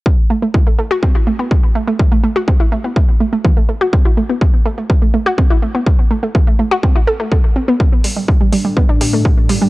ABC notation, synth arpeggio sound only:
X:1
M:4/4
L:1/16
Q:1/4=124
K:Ador
V:1 name="Synth arpeggio sound"
z2 A, A, E, A, A, F C E A, B, z2 A, A, | E, A, A, F C E A, B, z2 A, A, E, A, A, F | C E A, B, z2 A, A, E, A, A, F C E A, B, | z2 A, A, E, A, A, F C E A A, z2 C B, |
z2 G, G, D, G, G, G, B, D G, A, z2 G, G, |]